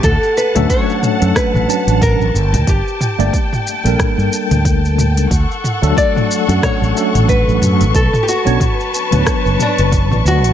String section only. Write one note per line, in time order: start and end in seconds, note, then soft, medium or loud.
0.00 5.27 A5 medium
0.04 2.32 F#5 medium
2.35 5.28 G5 medium
5.31 7.92 A4 medium
5.31 7.92 F#5 medium
5.31 10.53 C#6 medium
7.94 10.53 B4 medium
7.94 10.53 A5 medium